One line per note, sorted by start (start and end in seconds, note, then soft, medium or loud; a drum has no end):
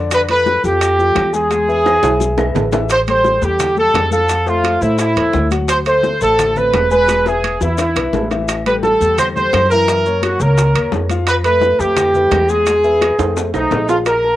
0.00 0.58 F2 medium
0.00 0.23 D3 medium
0.00 0.23 D4 medium
0.00 0.23 D5 medium
0.11 0.21 B4 loud
0.11 high bongo medium
0.11 high conga soft
0.11 high timbale medium
0.11 claves medium
0.11 maracas medium
0.29 0.57 F3 medium
0.29 0.58 F4 medium
0.29 0.58 A4 medium
0.29 0.62 B4 loud
0.29 high conga soft
0.29 high timbale medium
0.29 maracas soft
0.46 high bongo medium
0.46 high conga medium
0.46 maracas soft
0.64 1.12 F2 medium
0.64 0.92 F3 medium
0.64 0.93 F4 medium
0.64 1.34 G4 medium
0.64 0.93 A4 medium
0.64 maracas medium
0.81 high bongo medium
0.81 high conga soft
0.81 high timbale medium
0.81 claves medium
0.81 maracas medium
0.98 1.27 F3 medium
0.98 1.27 F4 medium
0.98 1.28 A4 medium
0.98 high conga soft
0.98 maracas soft
1.15 1.97 E2 medium
1.15 high bongo medium
1.15 low bongo medium
1.15 high conga medium
1.15 high timbale medium
1.15 claves medium
1.15 maracas soft
1.33 1.47 G#3 medium
1.33 1.48 G#4 medium
1.33 2.52 G#4 medium
1.33 1.48 G#5 medium
1.33 maracas medium
1.50 1.65 G#3 medium
1.50 1.65 G#4 medium
1.50 1.66 G#5 medium
1.50 high bongo medium
1.50 high conga soft
1.50 high timbale medium
1.50 maracas medium
1.68 1.97 B3 medium
1.68 1.97 B4 medium
1.68 1.97 E5 medium
1.68 high bongo soft
1.68 high conga soft
1.68 maracas soft
1.86 high bongo medium
1.86 high conga medium
1.86 high timbale medium
1.86 claves medium
1.86 maracas soft
2.03 2.52 B1 medium
2.03 2.32 B3 medium
2.03 2.32 B4 medium
2.03 2.32 E5 medium
2.03 high bongo medium
2.03 high conga soft
2.03 high timbale medium
2.03 maracas medium
2.20 high bongo medium
2.20 high conga medium
2.20 maracas medium
2.37 2.66 B3 medium
2.37 2.66 B4 medium
2.37 2.67 E5 medium
2.37 low bongo medium
2.37 high conga medium
2.37 low timbale medium
2.37 claves medium
2.37 maracas soft
2.55 3.37 A1 medium
2.55 low conga loud
2.55 low timbale loud
2.55 maracas soft
2.72 2.87 E3 medium
2.72 2.87 E4 medium
2.72 2.87 E5 medium
2.72 low bongo medium
2.72 low conga medium
2.72 low timbale medium
2.72 maracas medium
2.89 2.99 C5 loud
2.89 high bongo medium
2.89 high conga soft
2.89 high timbale medium
2.89 maracas medium
3.07 3.36 G3 medium
3.07 3.36 G4 medium
3.07 3.36 A4 medium
3.07 3.41 C5 medium
3.07 high conga soft
3.07 high timbale medium
3.07 maracas soft
3.25 high bongo medium
3.25 high conga medium
3.25 maracas soft
3.42 3.91 E2 medium
3.42 3.71 G3 medium
3.42 3.71 G4 medium
3.42 3.78 G4 medium
3.42 3.71 A4 medium
3.42 high conga soft
3.42 maracas medium
3.59 high bongo medium
3.59 high conga soft
3.59 low conga medium
3.59 high timbale medium
3.59 maracas medium
3.77 4.06 G3 medium
3.77 4.06 G4 medium
3.77 4.06 A4 medium
3.77 4.11 A4 loud
3.77 high conga soft
3.77 maracas soft
3.94 4.76 F2 medium
3.94 high bongo medium
3.94 low bongo medium
3.94 high conga medium
3.94 high timbale medium
3.94 low timbale medium
3.94 maracas soft
4.11 4.26 F3 medium
4.11 4.26 F4 medium
4.11 4.45 A4 loud
4.11 4.27 F5 medium
4.11 high conga medium
4.11 maracas medium
4.29 4.44 F3 medium
4.29 4.44 F4 medium
4.29 4.44 F5 medium
4.29 high bongo medium
4.29 high conga soft
4.29 high timbale medium
4.29 maracas medium
4.46 4.75 A3 medium
4.46 4.82 F4 medium
4.46 4.76 A4 medium
4.46 4.76 C5 medium
4.46 high bongo soft
4.46 high conga soft
4.46 maracas soft
4.63 high bongo medium
4.63 high conga medium
4.63 high timbale medium
4.63 maracas soft
4.81 5.14 A2 medium
4.81 5.10 A3 medium
4.81 4.98 E4 medium
4.81 5.11 A4 medium
4.81 5.11 C5 medium
4.81 high bongo soft
4.81 high conga soft
4.81 maracas medium
4.98 5.48 E4 medium
4.98 high bongo medium
4.98 high conga soft
4.98 high timbale medium
4.98 maracas medium
5.16 5.33 E2 medium
5.16 5.45 A3 medium
5.16 5.45 A4 medium
5.16 5.46 C5 medium
5.16 high bongo soft
5.16 high conga soft
5.16 high timbale medium
5.16 maracas soft
5.33 6.16 D2 medium
5.33 high bongo medium
5.33 low bongo medium
5.33 high conga medium
5.33 maracas soft
5.51 5.80 F#3 medium
5.51 5.80 F#4 medium
5.51 5.80 F#5 medium
5.51 high conga medium
5.51 high timbale medium
5.51 maracas medium
5.68 5.77 C5 loud
5.68 high bongo medium
5.68 high conga soft
5.68 high timbale medium
5.68 maracas medium
5.86 6.15 A3 medium
5.86 6.15 A4 medium
5.86 6.15 C5 medium
5.86 6.19 C5 loud
5.86 high conga soft
5.86 high timbale medium
5.86 maracas soft
6.03 high bongo medium
6.03 high conga medium
6.03 maracas soft
6.21 6.70 A1 medium
6.21 6.50 A3 medium
6.21 6.50 A4 medium
6.21 6.54 A4 medium
6.21 6.50 C5 medium
6.21 high conga soft
6.21 maracas medium
6.39 high bongo medium
6.39 high conga soft
6.39 low conga medium
6.39 high timbale medium
6.39 maracas medium
6.56 6.85 A3 medium
6.56 6.85 C4 medium
6.56 6.85 A4 medium
6.56 6.91 B4 loud
6.56 high conga soft
6.56 low conga medium
6.56 maracas soft
6.73 7.55 E1 medium
6.73 high bongo medium
6.73 low bongo medium
6.73 high conga medium
6.73 high timbale medium
6.73 low timbale medium
6.73 maracas soft
6.91 7.05 G#3 medium
6.91 7.06 G#4 medium
6.91 7.24 B4 loud
6.91 7.06 G#5 medium
6.91 maracas medium
7.08 7.23 G#3 medium
7.08 7.23 G#4 medium
7.08 high bongo medium
7.08 high conga soft
7.08 high timbale medium
7.08 maracas medium
7.26 7.55 B3 medium
7.26 7.61 G#4 medium
7.26 7.55 B4 medium
7.26 7.55 E5 medium
7.26 high bongo medium
7.26 high conga soft
7.26 maracas soft
7.44 high conga medium
7.44 high timbale medium
7.44 maracas soft
7.61 7.93 E2 medium
7.61 7.90 B3 medium
7.61 7.78 E4 medium
7.61 7.90 B4 medium
7.61 7.90 E5 medium
7.61 high bongo medium
7.61 maracas medium
7.78 8.28 E4 medium
7.78 low bongo loud
7.78 high conga soft
7.78 high timbale medium
7.78 maracas medium
7.96 8.12 B1 medium
7.96 8.25 B3 medium
7.96 8.25 B4 medium
7.96 8.25 E5 medium
7.96 low bongo medium
7.96 high conga soft
7.96 high timbale medium
7.96 maracas soft
8.13 8.95 A1 medium
8.13 low bongo medium
8.13 high conga medium
8.13 low timbale medium
8.13 maracas soft
8.31 8.60 E3 medium
8.31 8.60 E4 medium
8.31 8.60 E5 medium
8.31 low bongo medium
8.31 high conga medium
8.31 high timbale medium
8.31 maracas medium
8.49 high bongo medium
8.49 high conga soft
8.49 high timbale medium
8.49 claves medium
8.49 maracas medium
8.66 8.94 G3 medium
8.66 8.95 G4 medium
8.66 8.95 A4 medium
8.66 8.74 B4 medium
8.66 high conga soft
8.66 high timbale medium
8.66 maracas soft
8.83 9.16 A4 medium
8.83 high bongo medium
8.83 high conga medium
8.83 maracas soft
9.01 9.49 E2 medium
9.01 9.30 G3 medium
9.01 9.30 G4 medium
9.01 9.30 A4 medium
9.01 high conga soft
9.01 maracas medium
9.18 9.26 C5 loud
9.18 high bongo medium
9.18 high conga soft
9.18 low conga medium
9.18 high timbale medium
9.18 claves medium
9.18 maracas medium
9.35 9.64 G3 medium
9.35 9.64 G4 medium
9.35 9.64 A4 medium
9.35 9.68 C5 loud
9.35 high conga soft
9.35 low conga medium
9.35 maracas soft
9.53 10.35 F#2 medium
9.53 high bongo medium
9.53 low bongo medium
9.53 high conga medium
9.53 high timbale medium
9.53 claves medium
9.53 maracas soft
9.70 9.85 E3 medium
9.70 9.85 E4 medium
9.70 10.19 A#4 loud
9.70 9.86 E5 medium
9.70 maracas medium
9.88 10.02 E3 medium
9.88 10.03 E4 medium
9.88 10.03 E5 medium
9.88 high bongo medium
9.88 high conga soft
9.88 high timbale medium
9.88 maracas medium
10.05 10.34 A#3 medium
10.05 10.34 A#4 medium
10.05 10.34 C#5 medium
10.05 high bongo soft
10.05 high conga soft
10.05 maracas soft
10.22 10.41 F#4 medium
10.22 high bongo medium
10.22 high conga medium
10.22 high timbale medium
10.22 claves medium
10.22 maracas soft
10.40 10.72 C#2 medium
10.40 10.69 A#3 medium
10.40 10.69 A#4 medium
10.40 10.93 A#4 medium
10.40 10.69 C#5 medium
10.40 high bongo soft
10.40 high conga soft
10.40 maracas medium
10.57 high bongo medium
10.57 high conga soft
10.57 high timbale medium
10.57 maracas medium
10.74 10.91 D#2 medium
10.74 11.04 A#3 medium
10.74 11.04 A#4 medium
10.74 11.04 C#5 medium
10.74 high bongo soft
10.74 high conga soft
10.74 high timbale medium
10.74 claves medium
10.74 maracas soft
10.92 11.74 F2 medium
10.92 high bongo medium
10.92 low bongo medium
10.92 high conga medium
10.92 low timbale medium
10.92 maracas soft
11.09 11.38 F3 medium
11.09 11.39 F4 medium
11.09 11.39 F5 medium
11.09 high conga medium
11.09 high timbale medium
11.09 maracas medium
11.27 11.35 B4 loud
11.27 high bongo medium
11.27 high conga soft
11.27 high timbale medium
11.27 claves medium
11.27 maracas medium
11.44 11.73 A3 medium
11.44 11.73 A4 medium
11.44 11.77 B4 loud
11.44 11.74 B4 medium
11.44 high conga soft
11.44 high timbale medium
11.44 maracas soft
11.61 high bongo medium
11.61 high conga medium
11.61 maracas soft
11.79 12.28 F2 medium
11.79 12.08 A3 medium
11.79 12.50 G4 medium
11.79 12.08 A4 medium
11.79 12.09 B4 medium
11.79 high conga soft
11.79 maracas medium
11.96 high bongo medium
11.96 high conga soft
11.96 low conga medium
11.96 high timbale medium
11.96 claves medium
11.96 maracas medium
12.14 12.43 A3 medium
12.14 12.44 A4 medium
12.14 12.44 B4 medium
12.14 high conga soft
12.14 low conga medium
12.14 maracas soft
12.31 13.13 E2 medium
12.31 high bongo medium
12.31 low bongo medium
12.31 high conga medium
12.31 high timbale medium
12.31 low timbale medium
12.31 claves medium
12.31 maracas soft
12.49 12.64 G#3 medium
12.49 13.37 G#4 medium
12.49 12.64 G#4 medium
12.49 12.64 G#5 medium
12.49 maracas medium
12.66 12.81 G#3 medium
12.66 12.81 G#4 medium
12.66 12.82 G#5 medium
12.66 high bongo medium
12.66 high conga soft
12.66 high timbale medium
12.66 maracas medium
12.84 13.13 B3 medium
12.84 13.13 B4 medium
12.84 13.13 E5 medium
12.84 high bongo soft
12.84 high conga soft
12.84 maracas soft
13.01 high bongo medium
13.01 high conga medium
13.01 high timbale medium
13.01 claves medium
13.01 maracas soft
13.19 13.52 F2 medium
13.19 13.48 A3 medium
13.19 13.48 A4 medium
13.19 13.48 C5 medium
13.19 high bongo soft
13.19 high conga soft
13.19 high timbale loud
13.19 maracas medium
13.36 high bongo medium
13.36 high conga soft
13.36 low timbale medium
13.36 maracas medium
13.53 13.70 B1 medium
13.53 13.83 A3 medium
13.53 13.87 D#4 medium
13.53 13.83 A4 medium
13.53 13.84 C5 medium
13.53 high bongo soft
13.53 high conga soft
13.53 high timbale medium
13.53 claves medium
13.53 maracas soft
13.71 14.36 A#1 medium
13.71 high bongo medium
13.71 low bongo medium
13.71 high conga medium
13.71 low timbale medium
13.71 maracas soft
13.89 14.04 F3 medium
13.89 13.97 F4 medium
13.89 14.04 F4 medium
13.89 14.04 F5 medium
13.89 low timbale medium
13.89 maracas medium
14.06 14.36 A#4 medium
14.06 high bongo medium
14.06 high conga soft
14.06 high timbale medium
14.06 claves medium
14.06 maracas medium
14.23 14.36 A#3 medium
14.23 14.36 A#4 medium
14.23 14.36 A5 medium
14.23 high bongo soft
14.23 high conga soft